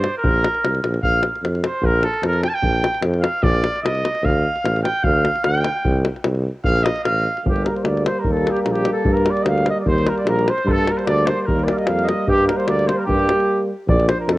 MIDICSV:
0, 0, Header, 1, 7, 480
1, 0, Start_track
1, 0, Key_signature, -2, "major"
1, 0, Tempo, 401338
1, 276, Time_signature, 2, 2, 24, 8
1, 8908, Key_signature, -2, "minor"
1, 17200, End_track
2, 0, Start_track
2, 0, Title_t, "Trumpet"
2, 0, Program_c, 0, 56
2, 0, Note_on_c, 0, 72, 89
2, 202, Note_off_c, 0, 72, 0
2, 209, Note_on_c, 0, 70, 103
2, 914, Note_off_c, 0, 70, 0
2, 1232, Note_on_c, 0, 77, 109
2, 1456, Note_off_c, 0, 77, 0
2, 1977, Note_on_c, 0, 72, 87
2, 2214, Note_on_c, 0, 70, 101
2, 2232, Note_off_c, 0, 72, 0
2, 2441, Note_on_c, 0, 69, 91
2, 2459, Note_off_c, 0, 70, 0
2, 2677, Note_off_c, 0, 69, 0
2, 2698, Note_on_c, 0, 70, 98
2, 2906, Note_off_c, 0, 70, 0
2, 2913, Note_on_c, 0, 79, 101
2, 2972, Note_on_c, 0, 81, 97
2, 2990, Note_off_c, 0, 79, 0
2, 3035, Note_on_c, 0, 79, 109
2, 3053, Note_off_c, 0, 81, 0
2, 3607, Note_off_c, 0, 79, 0
2, 3827, Note_on_c, 0, 77, 101
2, 4100, Note_on_c, 0, 74, 117
2, 4118, Note_off_c, 0, 77, 0
2, 4566, Note_off_c, 0, 74, 0
2, 4573, Note_on_c, 0, 75, 95
2, 5077, Note_on_c, 0, 77, 104
2, 5095, Note_off_c, 0, 75, 0
2, 5778, Note_off_c, 0, 77, 0
2, 5785, Note_on_c, 0, 79, 95
2, 6023, Note_on_c, 0, 77, 108
2, 6041, Note_off_c, 0, 79, 0
2, 6511, Note_on_c, 0, 79, 94
2, 6529, Note_off_c, 0, 77, 0
2, 7229, Note_off_c, 0, 79, 0
2, 7946, Note_on_c, 0, 77, 113
2, 8174, Note_on_c, 0, 75, 109
2, 8192, Note_off_c, 0, 77, 0
2, 8405, Note_off_c, 0, 75, 0
2, 8412, Note_on_c, 0, 77, 111
2, 8866, Note_off_c, 0, 77, 0
2, 11809, Note_on_c, 0, 72, 99
2, 12062, Note_on_c, 0, 70, 81
2, 12080, Note_off_c, 0, 72, 0
2, 12162, Note_off_c, 0, 70, 0
2, 12169, Note_on_c, 0, 74, 74
2, 12273, Note_off_c, 0, 74, 0
2, 12324, Note_on_c, 0, 70, 79
2, 12557, Note_on_c, 0, 72, 83
2, 12575, Note_off_c, 0, 70, 0
2, 12822, Note_on_c, 0, 69, 100
2, 12840, Note_off_c, 0, 72, 0
2, 13057, Note_on_c, 0, 70, 77
2, 13075, Note_off_c, 0, 69, 0
2, 13128, Note_on_c, 0, 72, 62
2, 13146, Note_off_c, 0, 70, 0
2, 13239, Note_off_c, 0, 72, 0
2, 13246, Note_on_c, 0, 74, 93
2, 13471, Note_on_c, 0, 72, 81
2, 13489, Note_off_c, 0, 74, 0
2, 13653, Note_off_c, 0, 72, 0
2, 13653, Note_on_c, 0, 72, 70
2, 13710, Note_on_c, 0, 70, 96
2, 13727, Note_off_c, 0, 72, 0
2, 13922, Note_on_c, 0, 74, 73
2, 13940, Note_off_c, 0, 70, 0
2, 14039, Note_on_c, 0, 77, 52
2, 14057, Note_off_c, 0, 74, 0
2, 14088, Note_on_c, 0, 75, 68
2, 14106, Note_off_c, 0, 77, 0
2, 14211, Note_on_c, 0, 77, 95
2, 14229, Note_off_c, 0, 75, 0
2, 14469, Note_on_c, 0, 75, 78
2, 14487, Note_off_c, 0, 77, 0
2, 14697, Note_off_c, 0, 75, 0
2, 14715, Note_on_c, 0, 67, 95
2, 14910, Note_off_c, 0, 67, 0
2, 14917, Note_on_c, 0, 70, 81
2, 15033, Note_on_c, 0, 72, 70
2, 15051, Note_off_c, 0, 70, 0
2, 15170, Note_on_c, 0, 74, 89
2, 15188, Note_off_c, 0, 72, 0
2, 15396, Note_on_c, 0, 72, 64
2, 15414, Note_off_c, 0, 74, 0
2, 15515, Note_on_c, 0, 70, 72
2, 15533, Note_off_c, 0, 72, 0
2, 15611, Note_off_c, 0, 70, 0
2, 15618, Note_on_c, 0, 67, 92
2, 16303, Note_off_c, 0, 67, 0
2, 17200, End_track
3, 0, Start_track
3, 0, Title_t, "Flugelhorn"
3, 0, Program_c, 1, 56
3, 8957, Note_on_c, 1, 67, 94
3, 9154, Note_on_c, 1, 70, 76
3, 9172, Note_off_c, 1, 67, 0
3, 9276, Note_off_c, 1, 70, 0
3, 9283, Note_on_c, 1, 72, 63
3, 9379, Note_on_c, 1, 74, 87
3, 9397, Note_off_c, 1, 72, 0
3, 9624, Note_off_c, 1, 74, 0
3, 9642, Note_on_c, 1, 72, 91
3, 9796, Note_on_c, 1, 70, 83
3, 9814, Note_off_c, 1, 72, 0
3, 9938, Note_on_c, 1, 69, 106
3, 9956, Note_off_c, 1, 70, 0
3, 10176, Note_on_c, 1, 67, 84
3, 10194, Note_off_c, 1, 69, 0
3, 10268, Note_off_c, 1, 67, 0
3, 10305, Note_on_c, 1, 70, 69
3, 10426, Note_on_c, 1, 67, 91
3, 10444, Note_off_c, 1, 70, 0
3, 10629, Note_off_c, 1, 67, 0
3, 10672, Note_on_c, 1, 69, 90
3, 10915, Note_on_c, 1, 70, 100
3, 10933, Note_off_c, 1, 69, 0
3, 11125, Note_on_c, 1, 74, 99
3, 11143, Note_off_c, 1, 70, 0
3, 11271, Note_on_c, 1, 75, 76
3, 11289, Note_off_c, 1, 74, 0
3, 11339, Note_on_c, 1, 77, 111
3, 11357, Note_off_c, 1, 75, 0
3, 11567, Note_off_c, 1, 77, 0
3, 11597, Note_on_c, 1, 75, 106
3, 11694, Note_off_c, 1, 75, 0
3, 11722, Note_on_c, 1, 74, 67
3, 11830, Note_on_c, 1, 72, 106
3, 11847, Note_off_c, 1, 74, 0
3, 12066, Note_on_c, 1, 70, 85
3, 12084, Note_off_c, 1, 72, 0
3, 12176, Note_off_c, 1, 70, 0
3, 12190, Note_on_c, 1, 74, 74
3, 12284, Note_off_c, 1, 74, 0
3, 12303, Note_on_c, 1, 70, 99
3, 12553, Note_on_c, 1, 72, 87
3, 12571, Note_off_c, 1, 70, 0
3, 12770, Note_on_c, 1, 69, 92
3, 12788, Note_off_c, 1, 72, 0
3, 13019, Note_on_c, 1, 70, 76
3, 13037, Note_off_c, 1, 69, 0
3, 13136, Note_on_c, 1, 72, 68
3, 13153, Note_off_c, 1, 70, 0
3, 13221, Note_off_c, 1, 72, 0
3, 13228, Note_on_c, 1, 74, 94
3, 13500, Note_on_c, 1, 72, 85
3, 13518, Note_off_c, 1, 74, 0
3, 13651, Note_off_c, 1, 72, 0
3, 13651, Note_on_c, 1, 72, 62
3, 13700, Note_on_c, 1, 70, 100
3, 13718, Note_off_c, 1, 72, 0
3, 13923, Note_on_c, 1, 74, 89
3, 13941, Note_off_c, 1, 70, 0
3, 14050, Note_on_c, 1, 77, 60
3, 14068, Note_off_c, 1, 74, 0
3, 14085, Note_on_c, 1, 75, 66
3, 14103, Note_off_c, 1, 77, 0
3, 14167, Note_on_c, 1, 77, 92
3, 14185, Note_off_c, 1, 75, 0
3, 14397, Note_on_c, 1, 75, 88
3, 14415, Note_off_c, 1, 77, 0
3, 14661, Note_off_c, 1, 75, 0
3, 14685, Note_on_c, 1, 67, 95
3, 14906, Note_off_c, 1, 67, 0
3, 14913, Note_on_c, 1, 70, 74
3, 15035, Note_on_c, 1, 72, 75
3, 15053, Note_off_c, 1, 70, 0
3, 15163, Note_on_c, 1, 74, 90
3, 15181, Note_off_c, 1, 72, 0
3, 15404, Note_on_c, 1, 72, 81
3, 15422, Note_off_c, 1, 74, 0
3, 15544, Note_on_c, 1, 70, 62
3, 15562, Note_off_c, 1, 72, 0
3, 15627, Note_off_c, 1, 70, 0
3, 15634, Note_on_c, 1, 67, 97
3, 16311, Note_off_c, 1, 67, 0
3, 16618, Note_on_c, 1, 74, 117
3, 16834, Note_off_c, 1, 74, 0
3, 16844, Note_on_c, 1, 72, 107
3, 16959, Note_off_c, 1, 72, 0
3, 16980, Note_on_c, 1, 70, 76
3, 17126, Note_on_c, 1, 69, 92
3, 17144, Note_off_c, 1, 70, 0
3, 17200, Note_off_c, 1, 69, 0
3, 17200, End_track
4, 0, Start_track
4, 0, Title_t, "Euphonium"
4, 0, Program_c, 2, 58
4, 8915, Note_on_c, 2, 58, 64
4, 9825, Note_off_c, 2, 58, 0
4, 9888, Note_on_c, 2, 58, 83
4, 10822, Note_off_c, 2, 58, 0
4, 10846, Note_on_c, 2, 58, 76
4, 11780, Note_off_c, 2, 58, 0
4, 11787, Note_on_c, 2, 58, 67
4, 12548, Note_off_c, 2, 58, 0
4, 12747, Note_on_c, 2, 58, 64
4, 13697, Note_off_c, 2, 58, 0
4, 13735, Note_on_c, 2, 58, 88
4, 14672, Note_off_c, 2, 58, 0
4, 14679, Note_on_c, 2, 58, 82
4, 15623, Note_off_c, 2, 58, 0
4, 15639, Note_on_c, 2, 58, 70
4, 16395, Note_off_c, 2, 58, 0
4, 16621, Note_on_c, 2, 62, 70
4, 17200, Note_off_c, 2, 62, 0
4, 17200, End_track
5, 0, Start_track
5, 0, Title_t, "Trombone"
5, 0, Program_c, 3, 57
5, 8911, Note_on_c, 3, 55, 61
5, 9823, Note_off_c, 3, 55, 0
5, 9883, Note_on_c, 3, 55, 78
5, 10819, Note_off_c, 3, 55, 0
5, 10842, Note_on_c, 3, 55, 86
5, 11781, Note_off_c, 3, 55, 0
5, 11799, Note_on_c, 3, 55, 81
5, 12554, Note_off_c, 3, 55, 0
5, 12767, Note_on_c, 3, 55, 69
5, 13707, Note_off_c, 3, 55, 0
5, 13743, Note_on_c, 3, 55, 84
5, 14676, Note_off_c, 3, 55, 0
5, 14699, Note_on_c, 3, 55, 83
5, 15633, Note_off_c, 3, 55, 0
5, 15650, Note_on_c, 3, 55, 70
5, 16401, Note_off_c, 3, 55, 0
5, 16606, Note_on_c, 3, 53, 75
5, 17200, Note_off_c, 3, 53, 0
5, 17200, End_track
6, 0, Start_track
6, 0, Title_t, "Tuba"
6, 0, Program_c, 4, 58
6, 277, Note_on_c, 4, 34, 95
6, 540, Note_off_c, 4, 34, 0
6, 768, Note_on_c, 4, 36, 78
6, 978, Note_off_c, 4, 36, 0
6, 999, Note_on_c, 4, 34, 85
6, 1213, Note_off_c, 4, 34, 0
6, 1238, Note_on_c, 4, 34, 83
6, 1501, Note_off_c, 4, 34, 0
6, 1701, Note_on_c, 4, 41, 75
6, 1968, Note_off_c, 4, 41, 0
6, 2176, Note_on_c, 4, 34, 106
6, 2444, Note_off_c, 4, 34, 0
6, 2657, Note_on_c, 4, 41, 88
6, 2925, Note_off_c, 4, 41, 0
6, 3137, Note_on_c, 4, 34, 87
6, 3405, Note_off_c, 4, 34, 0
6, 3614, Note_on_c, 4, 41, 90
6, 3883, Note_off_c, 4, 41, 0
6, 4085, Note_on_c, 4, 34, 110
6, 4355, Note_off_c, 4, 34, 0
6, 4584, Note_on_c, 4, 36, 72
6, 4850, Note_off_c, 4, 36, 0
6, 5051, Note_on_c, 4, 38, 103
6, 5320, Note_off_c, 4, 38, 0
6, 5544, Note_on_c, 4, 33, 84
6, 5809, Note_off_c, 4, 33, 0
6, 6035, Note_on_c, 4, 38, 99
6, 6297, Note_off_c, 4, 38, 0
6, 6514, Note_on_c, 4, 38, 88
6, 6776, Note_off_c, 4, 38, 0
6, 6997, Note_on_c, 4, 36, 103
6, 7258, Note_off_c, 4, 36, 0
6, 7475, Note_on_c, 4, 36, 94
6, 7737, Note_off_c, 4, 36, 0
6, 7955, Note_on_c, 4, 34, 111
6, 8217, Note_off_c, 4, 34, 0
6, 8427, Note_on_c, 4, 33, 86
6, 8691, Note_off_c, 4, 33, 0
6, 8902, Note_on_c, 4, 31, 83
6, 9168, Note_off_c, 4, 31, 0
6, 9369, Note_on_c, 4, 38, 84
6, 9639, Note_off_c, 4, 38, 0
6, 9863, Note_on_c, 4, 39, 84
6, 10130, Note_off_c, 4, 39, 0
6, 10346, Note_on_c, 4, 34, 77
6, 10612, Note_off_c, 4, 34, 0
6, 10819, Note_on_c, 4, 43, 83
6, 11087, Note_off_c, 4, 43, 0
6, 11303, Note_on_c, 4, 38, 83
6, 11571, Note_off_c, 4, 38, 0
6, 11787, Note_on_c, 4, 39, 95
6, 12054, Note_off_c, 4, 39, 0
6, 12262, Note_on_c, 4, 34, 93
6, 12531, Note_off_c, 4, 34, 0
6, 12734, Note_on_c, 4, 43, 88
6, 13006, Note_off_c, 4, 43, 0
6, 13242, Note_on_c, 4, 38, 94
6, 13506, Note_off_c, 4, 38, 0
6, 13725, Note_on_c, 4, 39, 97
6, 13989, Note_off_c, 4, 39, 0
6, 14203, Note_on_c, 4, 41, 82
6, 14468, Note_off_c, 4, 41, 0
6, 14675, Note_on_c, 4, 43, 98
6, 14942, Note_off_c, 4, 43, 0
6, 15159, Note_on_c, 4, 38, 79
6, 15425, Note_off_c, 4, 38, 0
6, 15633, Note_on_c, 4, 43, 101
6, 15900, Note_off_c, 4, 43, 0
6, 16597, Note_on_c, 4, 34, 102
6, 16862, Note_off_c, 4, 34, 0
6, 17071, Note_on_c, 4, 41, 89
6, 17200, Note_off_c, 4, 41, 0
6, 17200, End_track
7, 0, Start_track
7, 0, Title_t, "Davul"
7, 45, Note_on_c, 9, 37, 67
7, 165, Note_off_c, 9, 37, 0
7, 291, Note_on_c, 9, 43, 101
7, 410, Note_off_c, 9, 43, 0
7, 531, Note_on_c, 9, 37, 72
7, 650, Note_off_c, 9, 37, 0
7, 651, Note_on_c, 9, 37, 24
7, 770, Note_off_c, 9, 37, 0
7, 771, Note_on_c, 9, 37, 69
7, 891, Note_off_c, 9, 37, 0
7, 892, Note_on_c, 9, 37, 27
7, 1004, Note_off_c, 9, 37, 0
7, 1004, Note_on_c, 9, 37, 59
7, 1123, Note_off_c, 9, 37, 0
7, 1124, Note_on_c, 9, 37, 27
7, 1233, Note_on_c, 9, 43, 80
7, 1244, Note_off_c, 9, 37, 0
7, 1353, Note_off_c, 9, 43, 0
7, 1470, Note_on_c, 9, 37, 63
7, 1589, Note_off_c, 9, 37, 0
7, 1621, Note_on_c, 9, 37, 23
7, 1732, Note_off_c, 9, 37, 0
7, 1732, Note_on_c, 9, 37, 61
7, 1852, Note_off_c, 9, 37, 0
7, 1854, Note_on_c, 9, 37, 25
7, 1960, Note_off_c, 9, 37, 0
7, 1960, Note_on_c, 9, 37, 69
7, 2080, Note_off_c, 9, 37, 0
7, 2194, Note_on_c, 9, 43, 89
7, 2314, Note_off_c, 9, 43, 0
7, 2430, Note_on_c, 9, 37, 57
7, 2550, Note_off_c, 9, 37, 0
7, 2557, Note_on_c, 9, 37, 24
7, 2673, Note_off_c, 9, 37, 0
7, 2673, Note_on_c, 9, 37, 69
7, 2791, Note_off_c, 9, 37, 0
7, 2791, Note_on_c, 9, 37, 32
7, 2910, Note_off_c, 9, 37, 0
7, 2912, Note_on_c, 9, 37, 63
7, 3032, Note_off_c, 9, 37, 0
7, 3146, Note_on_c, 9, 43, 85
7, 3265, Note_off_c, 9, 43, 0
7, 3397, Note_on_c, 9, 37, 70
7, 3517, Note_off_c, 9, 37, 0
7, 3522, Note_on_c, 9, 37, 28
7, 3617, Note_off_c, 9, 37, 0
7, 3617, Note_on_c, 9, 37, 71
7, 3737, Note_off_c, 9, 37, 0
7, 3751, Note_on_c, 9, 37, 29
7, 3871, Note_off_c, 9, 37, 0
7, 3871, Note_on_c, 9, 37, 74
7, 3991, Note_off_c, 9, 37, 0
7, 4106, Note_on_c, 9, 43, 111
7, 4226, Note_off_c, 9, 43, 0
7, 4241, Note_on_c, 9, 37, 28
7, 4349, Note_off_c, 9, 37, 0
7, 4349, Note_on_c, 9, 37, 64
7, 4469, Note_off_c, 9, 37, 0
7, 4494, Note_on_c, 9, 37, 26
7, 4612, Note_off_c, 9, 37, 0
7, 4612, Note_on_c, 9, 37, 75
7, 4723, Note_off_c, 9, 37, 0
7, 4723, Note_on_c, 9, 37, 31
7, 4843, Note_off_c, 9, 37, 0
7, 4844, Note_on_c, 9, 37, 67
7, 4963, Note_off_c, 9, 37, 0
7, 4963, Note_on_c, 9, 37, 26
7, 5082, Note_off_c, 9, 37, 0
7, 5085, Note_on_c, 9, 43, 91
7, 5205, Note_off_c, 9, 43, 0
7, 5450, Note_on_c, 9, 37, 23
7, 5568, Note_off_c, 9, 37, 0
7, 5568, Note_on_c, 9, 37, 74
7, 5688, Note_off_c, 9, 37, 0
7, 5697, Note_on_c, 9, 37, 28
7, 5804, Note_off_c, 9, 37, 0
7, 5804, Note_on_c, 9, 37, 65
7, 5924, Note_off_c, 9, 37, 0
7, 6026, Note_on_c, 9, 43, 91
7, 6146, Note_off_c, 9, 43, 0
7, 6278, Note_on_c, 9, 37, 68
7, 6397, Note_off_c, 9, 37, 0
7, 6406, Note_on_c, 9, 37, 26
7, 6511, Note_off_c, 9, 37, 0
7, 6511, Note_on_c, 9, 37, 69
7, 6630, Note_off_c, 9, 37, 0
7, 6637, Note_on_c, 9, 37, 29
7, 6753, Note_off_c, 9, 37, 0
7, 6753, Note_on_c, 9, 37, 72
7, 6873, Note_off_c, 9, 37, 0
7, 6998, Note_on_c, 9, 43, 92
7, 7117, Note_off_c, 9, 43, 0
7, 7236, Note_on_c, 9, 37, 67
7, 7356, Note_off_c, 9, 37, 0
7, 7372, Note_on_c, 9, 37, 25
7, 7468, Note_off_c, 9, 37, 0
7, 7468, Note_on_c, 9, 37, 76
7, 7588, Note_off_c, 9, 37, 0
7, 7594, Note_on_c, 9, 37, 30
7, 7713, Note_off_c, 9, 37, 0
7, 7945, Note_on_c, 9, 43, 91
7, 8064, Note_off_c, 9, 43, 0
7, 8085, Note_on_c, 9, 37, 30
7, 8202, Note_off_c, 9, 37, 0
7, 8202, Note_on_c, 9, 37, 78
7, 8322, Note_off_c, 9, 37, 0
7, 8322, Note_on_c, 9, 37, 29
7, 8436, Note_off_c, 9, 37, 0
7, 8436, Note_on_c, 9, 37, 72
7, 8556, Note_off_c, 9, 37, 0
7, 8814, Note_on_c, 9, 37, 28
7, 8922, Note_on_c, 9, 43, 99
7, 8934, Note_off_c, 9, 37, 0
7, 9037, Note_on_c, 9, 37, 25
7, 9042, Note_off_c, 9, 43, 0
7, 9157, Note_off_c, 9, 37, 0
7, 9158, Note_on_c, 9, 37, 64
7, 9278, Note_off_c, 9, 37, 0
7, 9285, Note_on_c, 9, 37, 24
7, 9387, Note_off_c, 9, 37, 0
7, 9387, Note_on_c, 9, 37, 72
7, 9506, Note_off_c, 9, 37, 0
7, 9535, Note_on_c, 9, 37, 30
7, 9640, Note_off_c, 9, 37, 0
7, 9640, Note_on_c, 9, 37, 71
7, 9760, Note_off_c, 9, 37, 0
7, 9859, Note_on_c, 9, 43, 81
7, 9979, Note_off_c, 9, 43, 0
7, 10007, Note_on_c, 9, 37, 24
7, 10127, Note_off_c, 9, 37, 0
7, 10128, Note_on_c, 9, 37, 62
7, 10243, Note_off_c, 9, 37, 0
7, 10243, Note_on_c, 9, 37, 27
7, 10353, Note_off_c, 9, 37, 0
7, 10353, Note_on_c, 9, 37, 66
7, 10470, Note_off_c, 9, 37, 0
7, 10470, Note_on_c, 9, 37, 29
7, 10585, Note_off_c, 9, 37, 0
7, 10585, Note_on_c, 9, 37, 69
7, 10704, Note_off_c, 9, 37, 0
7, 10825, Note_on_c, 9, 43, 98
7, 10945, Note_off_c, 9, 43, 0
7, 10966, Note_on_c, 9, 37, 30
7, 11071, Note_off_c, 9, 37, 0
7, 11071, Note_on_c, 9, 37, 69
7, 11190, Note_off_c, 9, 37, 0
7, 11204, Note_on_c, 9, 37, 26
7, 11312, Note_off_c, 9, 37, 0
7, 11312, Note_on_c, 9, 37, 69
7, 11432, Note_off_c, 9, 37, 0
7, 11455, Note_on_c, 9, 37, 28
7, 11554, Note_off_c, 9, 37, 0
7, 11554, Note_on_c, 9, 37, 66
7, 11673, Note_off_c, 9, 37, 0
7, 11794, Note_on_c, 9, 43, 88
7, 11914, Note_off_c, 9, 43, 0
7, 11940, Note_on_c, 9, 37, 26
7, 12039, Note_off_c, 9, 37, 0
7, 12039, Note_on_c, 9, 37, 66
7, 12159, Note_off_c, 9, 37, 0
7, 12172, Note_on_c, 9, 37, 20
7, 12282, Note_off_c, 9, 37, 0
7, 12282, Note_on_c, 9, 37, 72
7, 12401, Note_off_c, 9, 37, 0
7, 12425, Note_on_c, 9, 37, 28
7, 12533, Note_off_c, 9, 37, 0
7, 12533, Note_on_c, 9, 37, 65
7, 12653, Note_off_c, 9, 37, 0
7, 12655, Note_on_c, 9, 37, 27
7, 12774, Note_off_c, 9, 37, 0
7, 12775, Note_on_c, 9, 43, 93
7, 12894, Note_off_c, 9, 43, 0
7, 12896, Note_on_c, 9, 37, 27
7, 13007, Note_off_c, 9, 37, 0
7, 13007, Note_on_c, 9, 37, 65
7, 13126, Note_off_c, 9, 37, 0
7, 13143, Note_on_c, 9, 37, 24
7, 13245, Note_off_c, 9, 37, 0
7, 13245, Note_on_c, 9, 37, 69
7, 13365, Note_off_c, 9, 37, 0
7, 13377, Note_on_c, 9, 37, 28
7, 13481, Note_off_c, 9, 37, 0
7, 13481, Note_on_c, 9, 37, 76
7, 13600, Note_off_c, 9, 37, 0
7, 13736, Note_on_c, 9, 43, 89
7, 13855, Note_off_c, 9, 43, 0
7, 13866, Note_on_c, 9, 37, 26
7, 13973, Note_off_c, 9, 37, 0
7, 13973, Note_on_c, 9, 37, 71
7, 14092, Note_off_c, 9, 37, 0
7, 14096, Note_on_c, 9, 37, 23
7, 14195, Note_off_c, 9, 37, 0
7, 14195, Note_on_c, 9, 37, 75
7, 14315, Note_off_c, 9, 37, 0
7, 14338, Note_on_c, 9, 37, 28
7, 14454, Note_off_c, 9, 37, 0
7, 14454, Note_on_c, 9, 37, 64
7, 14574, Note_off_c, 9, 37, 0
7, 14685, Note_on_c, 9, 43, 83
7, 14805, Note_off_c, 9, 43, 0
7, 14809, Note_on_c, 9, 37, 25
7, 14928, Note_off_c, 9, 37, 0
7, 14938, Note_on_c, 9, 37, 66
7, 15058, Note_off_c, 9, 37, 0
7, 15068, Note_on_c, 9, 37, 27
7, 15163, Note_off_c, 9, 37, 0
7, 15163, Note_on_c, 9, 37, 65
7, 15282, Note_off_c, 9, 37, 0
7, 15300, Note_on_c, 9, 37, 26
7, 15415, Note_off_c, 9, 37, 0
7, 15415, Note_on_c, 9, 37, 64
7, 15535, Note_off_c, 9, 37, 0
7, 15656, Note_on_c, 9, 43, 77
7, 15775, Note_off_c, 9, 43, 0
7, 15778, Note_on_c, 9, 37, 24
7, 15894, Note_off_c, 9, 37, 0
7, 15894, Note_on_c, 9, 37, 66
7, 16014, Note_off_c, 9, 37, 0
7, 16028, Note_on_c, 9, 37, 23
7, 16147, Note_off_c, 9, 37, 0
7, 16607, Note_on_c, 9, 43, 117
7, 16727, Note_off_c, 9, 43, 0
7, 16738, Note_on_c, 9, 37, 37
7, 16847, Note_off_c, 9, 37, 0
7, 16847, Note_on_c, 9, 37, 71
7, 16967, Note_off_c, 9, 37, 0
7, 17089, Note_on_c, 9, 37, 83
7, 17200, Note_off_c, 9, 37, 0
7, 17200, End_track
0, 0, End_of_file